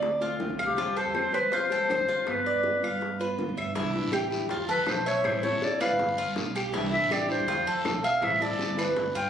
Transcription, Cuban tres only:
Already playing: D5
0.22 F4
0.59 F5
0.78 F4
0.97 A4
1.34 C5
1.53 F4
1.72 A4
1.91 C5
2.09 F4
2.46 D5
2.84 F5
3.21 B4
3.57 E5
3.76 E4
4.13 G4
4.51 F4
4.69 A4
5.06 E5
5.43 A4
5.81 B4
6.18 F4
6.56 G4
6.74 E4
7.11 G4
7.48 F4
7.67 A4
8.04 E5
8.42 A4
8.79 B4
9.15 F4

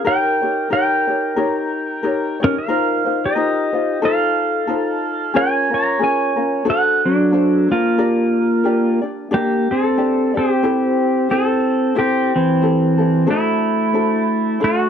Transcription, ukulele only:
0.05 D#4 G4 A#4 C#5
0.42 D#4 G4 C#5
0.70 D#4 G4 A#4 C#5
1.07 D#4 G4 C#5
1.36 D#4 G4 A#4 C#5
2.03 D#4 G4 A#4 C#5
2.40 D#4 G4 C#5
2.68 D#4 F4 A#4 C5
3.05 D#4 F4 C5
3.35 D#4 F4 A#4 C5
3.73 D#4 F4 C5
4.02 D#4 F4 A4 C5
4.67 D#4 F4 A4 C5
5.34 C#4 F4 G#4 A#4
5.70 C#4 F4 A#4
5.99 C#4 F4 G#4 A#4
6.36 C#4 F4 A#4
6.65 D4 F#4 A4 C5
7.32 D4 F#4 A4 C5
7.68 D4 C5
7.98 D4 G4 A#4 D5
8.64 D4 G4 A#4 D5
9.02 D4 G4 D5
9.31 D4 G4 D5
9.97 D4 G4 D5
10.34 D4 G4 D5
10.63 E4 G4 A4 C5
11.29 E4 G4 A4 C5
11.95 E4 G4 A4 C5
12.61 E4 G4 A4 C5
12.98 E4 G4 A4
13.26 D4 F#4 A4 C5
13.93 D4 F#4 A4 C5
14.60 D4 A4 C5

